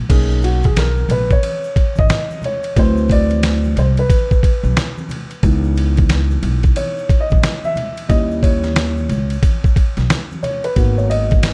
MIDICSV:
0, 0, Header, 1, 4, 480
1, 0, Start_track
1, 0, Key_signature, 5, "major"
1, 0, Tempo, 666667
1, 70, Time_signature, 4, 2, 24, 8
1, 8304, End_track
2, 0, Start_track
2, 0, Title_t, "Grand piano"
2, 0, Program_c, 0, 0
2, 66, Note_on_c, 0, 58, 54
2, 73, Note_on_c, 0, 61, 50
2, 76, Note_on_c, 0, 63, 60
2, 77, Note_on_c, 0, 68, 85
2, 297, Note_off_c, 0, 68, 0
2, 315, Note_on_c, 0, 66, 79
2, 410, Note_off_c, 0, 58, 0
2, 413, Note_off_c, 0, 61, 0
2, 415, Note_off_c, 0, 63, 0
2, 467, Note_off_c, 0, 66, 0
2, 472, Note_on_c, 0, 68, 84
2, 550, Note_off_c, 0, 68, 0
2, 560, Note_on_c, 0, 70, 82
2, 801, Note_on_c, 0, 71, 89
2, 802, Note_off_c, 0, 70, 0
2, 950, Note_off_c, 0, 71, 0
2, 952, Note_on_c, 0, 73, 97
2, 1430, Note_on_c, 0, 75, 99
2, 1440, Note_off_c, 0, 73, 0
2, 1732, Note_off_c, 0, 75, 0
2, 1767, Note_on_c, 0, 73, 94
2, 1982, Note_off_c, 0, 73, 0
2, 1990, Note_on_c, 0, 54, 54
2, 1992, Note_on_c, 0, 71, 52
2, 1995, Note_on_c, 0, 60, 49
2, 1999, Note_on_c, 0, 64, 61
2, 2010, Note_on_c, 0, 72, 99
2, 2246, Note_on_c, 0, 74, 101
2, 2247, Note_off_c, 0, 72, 0
2, 2681, Note_off_c, 0, 54, 0
2, 2682, Note_off_c, 0, 71, 0
2, 2684, Note_off_c, 0, 60, 0
2, 2686, Note_off_c, 0, 64, 0
2, 2726, Note_on_c, 0, 72, 85
2, 2732, Note_off_c, 0, 74, 0
2, 2762, Note_off_c, 0, 72, 0
2, 2874, Note_on_c, 0, 71, 85
2, 3909, Note_on_c, 0, 52, 57
2, 3914, Note_on_c, 0, 59, 50
2, 3917, Note_on_c, 0, 51, 60
2, 4038, Note_off_c, 0, 71, 0
2, 4871, Note_on_c, 0, 73, 88
2, 5187, Note_on_c, 0, 75, 86
2, 5200, Note_off_c, 0, 73, 0
2, 5507, Note_on_c, 0, 76, 96
2, 5518, Note_off_c, 0, 75, 0
2, 5801, Note_off_c, 0, 52, 0
2, 5803, Note_off_c, 0, 59, 0
2, 5805, Note_off_c, 0, 51, 0
2, 5821, Note_on_c, 0, 55, 54
2, 5826, Note_on_c, 0, 61, 51
2, 5826, Note_on_c, 0, 75, 103
2, 5832, Note_on_c, 0, 64, 65
2, 5838, Note_off_c, 0, 76, 0
2, 6069, Note_on_c, 0, 73, 94
2, 6075, Note_off_c, 0, 75, 0
2, 6517, Note_off_c, 0, 55, 0
2, 6519, Note_off_c, 0, 61, 0
2, 6522, Note_off_c, 0, 64, 0
2, 7241, Note_off_c, 0, 73, 0
2, 7508, Note_on_c, 0, 73, 82
2, 7663, Note_on_c, 0, 71, 75
2, 7664, Note_off_c, 0, 73, 0
2, 7745, Note_on_c, 0, 58, 56
2, 7749, Note_on_c, 0, 59, 51
2, 7752, Note_on_c, 0, 66, 60
2, 7904, Note_on_c, 0, 73, 76
2, 7909, Note_off_c, 0, 71, 0
2, 7991, Note_on_c, 0, 75, 94
2, 7995, Note_off_c, 0, 73, 0
2, 8304, Note_off_c, 0, 58, 0
2, 8304, Note_off_c, 0, 59, 0
2, 8304, Note_off_c, 0, 66, 0
2, 8304, Note_off_c, 0, 75, 0
2, 8304, End_track
3, 0, Start_track
3, 0, Title_t, "Upright bass"
3, 0, Program_c, 1, 32
3, 69, Note_on_c, 1, 35, 104
3, 761, Note_off_c, 1, 35, 0
3, 782, Note_on_c, 1, 34, 91
3, 965, Note_off_c, 1, 34, 0
3, 1430, Note_on_c, 1, 32, 86
3, 1493, Note_off_c, 1, 32, 0
3, 1989, Note_on_c, 1, 38, 94
3, 2681, Note_off_c, 1, 38, 0
3, 2707, Note_on_c, 1, 36, 83
3, 2888, Note_off_c, 1, 36, 0
3, 3337, Note_on_c, 1, 35, 92
3, 3405, Note_off_c, 1, 35, 0
3, 3911, Note_on_c, 1, 37, 110
3, 4602, Note_off_c, 1, 37, 0
3, 4627, Note_on_c, 1, 35, 89
3, 4808, Note_off_c, 1, 35, 0
3, 5269, Note_on_c, 1, 34, 88
3, 5333, Note_off_c, 1, 34, 0
3, 5829, Note_on_c, 1, 39, 103
3, 6521, Note_off_c, 1, 39, 0
3, 6546, Note_on_c, 1, 37, 86
3, 6728, Note_off_c, 1, 37, 0
3, 7179, Note_on_c, 1, 35, 86
3, 7247, Note_off_c, 1, 35, 0
3, 7750, Note_on_c, 1, 32, 98
3, 8304, Note_off_c, 1, 32, 0
3, 8304, End_track
4, 0, Start_track
4, 0, Title_t, "Drums"
4, 70, Note_on_c, 9, 36, 105
4, 71, Note_on_c, 9, 51, 65
4, 72, Note_on_c, 9, 49, 89
4, 73, Note_on_c, 9, 82, 69
4, 142, Note_off_c, 9, 36, 0
4, 143, Note_off_c, 9, 51, 0
4, 144, Note_off_c, 9, 49, 0
4, 145, Note_off_c, 9, 82, 0
4, 220, Note_on_c, 9, 82, 43
4, 292, Note_off_c, 9, 82, 0
4, 301, Note_on_c, 9, 82, 42
4, 319, Note_on_c, 9, 51, 71
4, 373, Note_off_c, 9, 82, 0
4, 391, Note_off_c, 9, 51, 0
4, 450, Note_on_c, 9, 63, 45
4, 450, Note_on_c, 9, 82, 44
4, 462, Note_on_c, 9, 51, 36
4, 469, Note_on_c, 9, 36, 84
4, 522, Note_off_c, 9, 63, 0
4, 522, Note_off_c, 9, 82, 0
4, 534, Note_off_c, 9, 51, 0
4, 541, Note_off_c, 9, 36, 0
4, 548, Note_on_c, 9, 82, 64
4, 551, Note_on_c, 9, 44, 54
4, 551, Note_on_c, 9, 51, 73
4, 554, Note_on_c, 9, 38, 102
4, 620, Note_off_c, 9, 82, 0
4, 623, Note_off_c, 9, 44, 0
4, 623, Note_off_c, 9, 51, 0
4, 626, Note_off_c, 9, 38, 0
4, 697, Note_on_c, 9, 63, 50
4, 697, Note_on_c, 9, 82, 37
4, 769, Note_off_c, 9, 63, 0
4, 769, Note_off_c, 9, 82, 0
4, 790, Note_on_c, 9, 51, 57
4, 794, Note_on_c, 9, 64, 64
4, 794, Note_on_c, 9, 82, 47
4, 862, Note_off_c, 9, 51, 0
4, 866, Note_off_c, 9, 64, 0
4, 866, Note_off_c, 9, 82, 0
4, 939, Note_on_c, 9, 51, 40
4, 940, Note_on_c, 9, 36, 80
4, 941, Note_on_c, 9, 82, 42
4, 1011, Note_off_c, 9, 51, 0
4, 1012, Note_off_c, 9, 36, 0
4, 1013, Note_off_c, 9, 82, 0
4, 1028, Note_on_c, 9, 63, 49
4, 1028, Note_on_c, 9, 82, 66
4, 1030, Note_on_c, 9, 51, 75
4, 1100, Note_off_c, 9, 63, 0
4, 1100, Note_off_c, 9, 82, 0
4, 1102, Note_off_c, 9, 51, 0
4, 1178, Note_on_c, 9, 82, 45
4, 1250, Note_off_c, 9, 82, 0
4, 1268, Note_on_c, 9, 36, 85
4, 1268, Note_on_c, 9, 82, 43
4, 1272, Note_on_c, 9, 51, 54
4, 1340, Note_off_c, 9, 36, 0
4, 1340, Note_off_c, 9, 82, 0
4, 1344, Note_off_c, 9, 51, 0
4, 1408, Note_on_c, 9, 63, 61
4, 1408, Note_on_c, 9, 82, 43
4, 1430, Note_on_c, 9, 36, 87
4, 1480, Note_off_c, 9, 63, 0
4, 1480, Note_off_c, 9, 82, 0
4, 1502, Note_off_c, 9, 36, 0
4, 1504, Note_on_c, 9, 64, 62
4, 1504, Note_on_c, 9, 82, 61
4, 1510, Note_on_c, 9, 44, 49
4, 1510, Note_on_c, 9, 51, 68
4, 1512, Note_on_c, 9, 38, 105
4, 1576, Note_off_c, 9, 64, 0
4, 1576, Note_off_c, 9, 82, 0
4, 1582, Note_off_c, 9, 44, 0
4, 1582, Note_off_c, 9, 51, 0
4, 1584, Note_off_c, 9, 38, 0
4, 1659, Note_on_c, 9, 63, 60
4, 1659, Note_on_c, 9, 82, 44
4, 1731, Note_off_c, 9, 63, 0
4, 1731, Note_off_c, 9, 82, 0
4, 1740, Note_on_c, 9, 64, 61
4, 1740, Note_on_c, 9, 82, 44
4, 1759, Note_on_c, 9, 51, 51
4, 1812, Note_off_c, 9, 64, 0
4, 1812, Note_off_c, 9, 82, 0
4, 1831, Note_off_c, 9, 51, 0
4, 1893, Note_on_c, 9, 82, 40
4, 1901, Note_on_c, 9, 51, 42
4, 1965, Note_off_c, 9, 82, 0
4, 1973, Note_off_c, 9, 51, 0
4, 1990, Note_on_c, 9, 82, 68
4, 1991, Note_on_c, 9, 36, 103
4, 1992, Note_on_c, 9, 51, 69
4, 2062, Note_off_c, 9, 82, 0
4, 2063, Note_off_c, 9, 36, 0
4, 2064, Note_off_c, 9, 51, 0
4, 2139, Note_on_c, 9, 82, 46
4, 2211, Note_off_c, 9, 82, 0
4, 2219, Note_on_c, 9, 82, 44
4, 2229, Note_on_c, 9, 36, 89
4, 2239, Note_on_c, 9, 51, 70
4, 2291, Note_off_c, 9, 82, 0
4, 2301, Note_off_c, 9, 36, 0
4, 2311, Note_off_c, 9, 51, 0
4, 2372, Note_on_c, 9, 63, 47
4, 2372, Note_on_c, 9, 82, 45
4, 2381, Note_on_c, 9, 51, 37
4, 2444, Note_off_c, 9, 63, 0
4, 2444, Note_off_c, 9, 82, 0
4, 2453, Note_off_c, 9, 51, 0
4, 2469, Note_on_c, 9, 44, 56
4, 2469, Note_on_c, 9, 51, 78
4, 2472, Note_on_c, 9, 38, 104
4, 2472, Note_on_c, 9, 82, 64
4, 2541, Note_off_c, 9, 44, 0
4, 2541, Note_off_c, 9, 51, 0
4, 2544, Note_off_c, 9, 38, 0
4, 2544, Note_off_c, 9, 82, 0
4, 2621, Note_on_c, 9, 63, 54
4, 2621, Note_on_c, 9, 82, 36
4, 2693, Note_off_c, 9, 63, 0
4, 2693, Note_off_c, 9, 82, 0
4, 2714, Note_on_c, 9, 51, 54
4, 2716, Note_on_c, 9, 64, 65
4, 2716, Note_on_c, 9, 82, 47
4, 2786, Note_off_c, 9, 51, 0
4, 2788, Note_off_c, 9, 64, 0
4, 2788, Note_off_c, 9, 82, 0
4, 2861, Note_on_c, 9, 51, 40
4, 2865, Note_on_c, 9, 82, 41
4, 2933, Note_off_c, 9, 51, 0
4, 2937, Note_off_c, 9, 82, 0
4, 2949, Note_on_c, 9, 36, 101
4, 2952, Note_on_c, 9, 51, 75
4, 2953, Note_on_c, 9, 63, 47
4, 2953, Note_on_c, 9, 82, 66
4, 3021, Note_off_c, 9, 36, 0
4, 3024, Note_off_c, 9, 51, 0
4, 3025, Note_off_c, 9, 63, 0
4, 3025, Note_off_c, 9, 82, 0
4, 3104, Note_on_c, 9, 36, 94
4, 3107, Note_on_c, 9, 82, 47
4, 3176, Note_off_c, 9, 36, 0
4, 3179, Note_off_c, 9, 82, 0
4, 3191, Note_on_c, 9, 36, 88
4, 3196, Note_on_c, 9, 82, 42
4, 3198, Note_on_c, 9, 51, 54
4, 3263, Note_off_c, 9, 36, 0
4, 3268, Note_off_c, 9, 82, 0
4, 3270, Note_off_c, 9, 51, 0
4, 3337, Note_on_c, 9, 63, 60
4, 3337, Note_on_c, 9, 82, 39
4, 3409, Note_off_c, 9, 63, 0
4, 3409, Note_off_c, 9, 82, 0
4, 3432, Note_on_c, 9, 44, 46
4, 3432, Note_on_c, 9, 51, 67
4, 3434, Note_on_c, 9, 38, 101
4, 3434, Note_on_c, 9, 64, 64
4, 3434, Note_on_c, 9, 82, 60
4, 3504, Note_off_c, 9, 44, 0
4, 3504, Note_off_c, 9, 51, 0
4, 3506, Note_off_c, 9, 38, 0
4, 3506, Note_off_c, 9, 64, 0
4, 3506, Note_off_c, 9, 82, 0
4, 3583, Note_on_c, 9, 63, 63
4, 3583, Note_on_c, 9, 82, 45
4, 3655, Note_off_c, 9, 63, 0
4, 3655, Note_off_c, 9, 82, 0
4, 3665, Note_on_c, 9, 64, 62
4, 3665, Note_on_c, 9, 82, 45
4, 3681, Note_on_c, 9, 51, 53
4, 3737, Note_off_c, 9, 64, 0
4, 3737, Note_off_c, 9, 82, 0
4, 3753, Note_off_c, 9, 51, 0
4, 3819, Note_on_c, 9, 82, 41
4, 3822, Note_on_c, 9, 51, 39
4, 3891, Note_off_c, 9, 82, 0
4, 3894, Note_off_c, 9, 51, 0
4, 3909, Note_on_c, 9, 51, 65
4, 3911, Note_on_c, 9, 36, 100
4, 3916, Note_on_c, 9, 82, 70
4, 3981, Note_off_c, 9, 51, 0
4, 3983, Note_off_c, 9, 36, 0
4, 3988, Note_off_c, 9, 82, 0
4, 4060, Note_on_c, 9, 82, 43
4, 4132, Note_off_c, 9, 82, 0
4, 4144, Note_on_c, 9, 82, 42
4, 4158, Note_on_c, 9, 51, 74
4, 4216, Note_off_c, 9, 82, 0
4, 4230, Note_off_c, 9, 51, 0
4, 4295, Note_on_c, 9, 63, 47
4, 4295, Note_on_c, 9, 82, 46
4, 4300, Note_on_c, 9, 51, 38
4, 4309, Note_on_c, 9, 36, 86
4, 4367, Note_off_c, 9, 63, 0
4, 4367, Note_off_c, 9, 82, 0
4, 4372, Note_off_c, 9, 51, 0
4, 4381, Note_off_c, 9, 36, 0
4, 4387, Note_on_c, 9, 44, 56
4, 4387, Note_on_c, 9, 51, 76
4, 4390, Note_on_c, 9, 38, 104
4, 4394, Note_on_c, 9, 82, 60
4, 4459, Note_off_c, 9, 44, 0
4, 4459, Note_off_c, 9, 51, 0
4, 4462, Note_off_c, 9, 38, 0
4, 4466, Note_off_c, 9, 82, 0
4, 4540, Note_on_c, 9, 63, 51
4, 4540, Note_on_c, 9, 82, 39
4, 4612, Note_off_c, 9, 63, 0
4, 4612, Note_off_c, 9, 82, 0
4, 4628, Note_on_c, 9, 51, 56
4, 4635, Note_on_c, 9, 64, 65
4, 4635, Note_on_c, 9, 82, 46
4, 4700, Note_off_c, 9, 51, 0
4, 4707, Note_off_c, 9, 64, 0
4, 4707, Note_off_c, 9, 82, 0
4, 4775, Note_on_c, 9, 51, 39
4, 4779, Note_on_c, 9, 36, 85
4, 4784, Note_on_c, 9, 82, 42
4, 4847, Note_off_c, 9, 51, 0
4, 4851, Note_off_c, 9, 36, 0
4, 4856, Note_off_c, 9, 82, 0
4, 4867, Note_on_c, 9, 51, 81
4, 4871, Note_on_c, 9, 63, 48
4, 4871, Note_on_c, 9, 82, 63
4, 4939, Note_off_c, 9, 51, 0
4, 4943, Note_off_c, 9, 63, 0
4, 4943, Note_off_c, 9, 82, 0
4, 5025, Note_on_c, 9, 82, 47
4, 5097, Note_off_c, 9, 82, 0
4, 5108, Note_on_c, 9, 36, 91
4, 5113, Note_on_c, 9, 51, 53
4, 5113, Note_on_c, 9, 82, 42
4, 5180, Note_off_c, 9, 36, 0
4, 5185, Note_off_c, 9, 51, 0
4, 5185, Note_off_c, 9, 82, 0
4, 5256, Note_on_c, 9, 63, 61
4, 5256, Note_on_c, 9, 82, 41
4, 5270, Note_on_c, 9, 36, 89
4, 5328, Note_off_c, 9, 63, 0
4, 5328, Note_off_c, 9, 82, 0
4, 5342, Note_off_c, 9, 36, 0
4, 5350, Note_on_c, 9, 64, 60
4, 5350, Note_on_c, 9, 82, 64
4, 5352, Note_on_c, 9, 44, 50
4, 5352, Note_on_c, 9, 51, 69
4, 5354, Note_on_c, 9, 38, 104
4, 5422, Note_off_c, 9, 64, 0
4, 5422, Note_off_c, 9, 82, 0
4, 5424, Note_off_c, 9, 44, 0
4, 5424, Note_off_c, 9, 51, 0
4, 5426, Note_off_c, 9, 38, 0
4, 5501, Note_on_c, 9, 63, 64
4, 5501, Note_on_c, 9, 82, 43
4, 5573, Note_off_c, 9, 63, 0
4, 5573, Note_off_c, 9, 82, 0
4, 5585, Note_on_c, 9, 64, 66
4, 5585, Note_on_c, 9, 82, 46
4, 5596, Note_on_c, 9, 51, 52
4, 5657, Note_off_c, 9, 64, 0
4, 5657, Note_off_c, 9, 82, 0
4, 5668, Note_off_c, 9, 51, 0
4, 5739, Note_on_c, 9, 82, 41
4, 5742, Note_on_c, 9, 51, 44
4, 5811, Note_off_c, 9, 82, 0
4, 5814, Note_off_c, 9, 51, 0
4, 5829, Note_on_c, 9, 36, 103
4, 5829, Note_on_c, 9, 51, 68
4, 5835, Note_on_c, 9, 82, 72
4, 5901, Note_off_c, 9, 36, 0
4, 5901, Note_off_c, 9, 51, 0
4, 5907, Note_off_c, 9, 82, 0
4, 5980, Note_on_c, 9, 82, 44
4, 6052, Note_off_c, 9, 82, 0
4, 6067, Note_on_c, 9, 82, 44
4, 6068, Note_on_c, 9, 36, 93
4, 6076, Note_on_c, 9, 51, 69
4, 6139, Note_off_c, 9, 82, 0
4, 6140, Note_off_c, 9, 36, 0
4, 6148, Note_off_c, 9, 51, 0
4, 6218, Note_on_c, 9, 38, 38
4, 6218, Note_on_c, 9, 63, 47
4, 6218, Note_on_c, 9, 82, 46
4, 6221, Note_on_c, 9, 51, 36
4, 6290, Note_off_c, 9, 38, 0
4, 6290, Note_off_c, 9, 63, 0
4, 6290, Note_off_c, 9, 82, 0
4, 6293, Note_off_c, 9, 51, 0
4, 6306, Note_on_c, 9, 44, 57
4, 6306, Note_on_c, 9, 51, 78
4, 6309, Note_on_c, 9, 38, 105
4, 6317, Note_on_c, 9, 82, 66
4, 6378, Note_off_c, 9, 44, 0
4, 6378, Note_off_c, 9, 51, 0
4, 6381, Note_off_c, 9, 38, 0
4, 6389, Note_off_c, 9, 82, 0
4, 6462, Note_on_c, 9, 63, 50
4, 6462, Note_on_c, 9, 82, 37
4, 6534, Note_off_c, 9, 63, 0
4, 6534, Note_off_c, 9, 82, 0
4, 6548, Note_on_c, 9, 51, 55
4, 6562, Note_on_c, 9, 64, 62
4, 6562, Note_on_c, 9, 82, 47
4, 6620, Note_off_c, 9, 51, 0
4, 6634, Note_off_c, 9, 64, 0
4, 6634, Note_off_c, 9, 82, 0
4, 6697, Note_on_c, 9, 51, 42
4, 6713, Note_on_c, 9, 82, 42
4, 6769, Note_off_c, 9, 51, 0
4, 6785, Note_off_c, 9, 82, 0
4, 6787, Note_on_c, 9, 36, 104
4, 6788, Note_on_c, 9, 51, 78
4, 6798, Note_on_c, 9, 63, 50
4, 6798, Note_on_c, 9, 82, 64
4, 6859, Note_off_c, 9, 36, 0
4, 6860, Note_off_c, 9, 51, 0
4, 6870, Note_off_c, 9, 63, 0
4, 6870, Note_off_c, 9, 82, 0
4, 6942, Note_on_c, 9, 36, 97
4, 6951, Note_on_c, 9, 82, 47
4, 7014, Note_off_c, 9, 36, 0
4, 7023, Note_off_c, 9, 82, 0
4, 7029, Note_on_c, 9, 36, 91
4, 7033, Note_on_c, 9, 51, 53
4, 7040, Note_on_c, 9, 82, 42
4, 7101, Note_off_c, 9, 36, 0
4, 7105, Note_off_c, 9, 51, 0
4, 7112, Note_off_c, 9, 82, 0
4, 7178, Note_on_c, 9, 51, 39
4, 7180, Note_on_c, 9, 63, 57
4, 7180, Note_on_c, 9, 82, 43
4, 7183, Note_on_c, 9, 38, 32
4, 7250, Note_off_c, 9, 51, 0
4, 7252, Note_off_c, 9, 63, 0
4, 7252, Note_off_c, 9, 82, 0
4, 7255, Note_off_c, 9, 38, 0
4, 7272, Note_on_c, 9, 44, 50
4, 7272, Note_on_c, 9, 51, 68
4, 7274, Note_on_c, 9, 38, 102
4, 7279, Note_on_c, 9, 64, 59
4, 7279, Note_on_c, 9, 82, 65
4, 7344, Note_off_c, 9, 44, 0
4, 7344, Note_off_c, 9, 51, 0
4, 7346, Note_off_c, 9, 38, 0
4, 7351, Note_off_c, 9, 64, 0
4, 7351, Note_off_c, 9, 82, 0
4, 7428, Note_on_c, 9, 63, 62
4, 7428, Note_on_c, 9, 82, 44
4, 7500, Note_off_c, 9, 63, 0
4, 7500, Note_off_c, 9, 82, 0
4, 7511, Note_on_c, 9, 64, 67
4, 7511, Note_on_c, 9, 82, 47
4, 7518, Note_on_c, 9, 51, 57
4, 7583, Note_off_c, 9, 64, 0
4, 7583, Note_off_c, 9, 82, 0
4, 7590, Note_off_c, 9, 51, 0
4, 7662, Note_on_c, 9, 51, 43
4, 7662, Note_on_c, 9, 82, 40
4, 7734, Note_off_c, 9, 51, 0
4, 7734, Note_off_c, 9, 82, 0
4, 7749, Note_on_c, 9, 51, 73
4, 7750, Note_on_c, 9, 36, 102
4, 7760, Note_on_c, 9, 82, 71
4, 7821, Note_off_c, 9, 51, 0
4, 7822, Note_off_c, 9, 36, 0
4, 7832, Note_off_c, 9, 82, 0
4, 7906, Note_on_c, 9, 82, 44
4, 7978, Note_off_c, 9, 82, 0
4, 7991, Note_on_c, 9, 82, 46
4, 7999, Note_on_c, 9, 51, 72
4, 8063, Note_off_c, 9, 82, 0
4, 8071, Note_off_c, 9, 51, 0
4, 8140, Note_on_c, 9, 63, 47
4, 8140, Note_on_c, 9, 82, 46
4, 8143, Note_on_c, 9, 51, 36
4, 8150, Note_on_c, 9, 36, 88
4, 8212, Note_off_c, 9, 63, 0
4, 8212, Note_off_c, 9, 82, 0
4, 8215, Note_off_c, 9, 51, 0
4, 8222, Note_off_c, 9, 36, 0
4, 8228, Note_on_c, 9, 44, 54
4, 8228, Note_on_c, 9, 51, 80
4, 8231, Note_on_c, 9, 38, 108
4, 8237, Note_on_c, 9, 82, 67
4, 8300, Note_off_c, 9, 44, 0
4, 8300, Note_off_c, 9, 51, 0
4, 8303, Note_off_c, 9, 38, 0
4, 8304, Note_off_c, 9, 82, 0
4, 8304, End_track
0, 0, End_of_file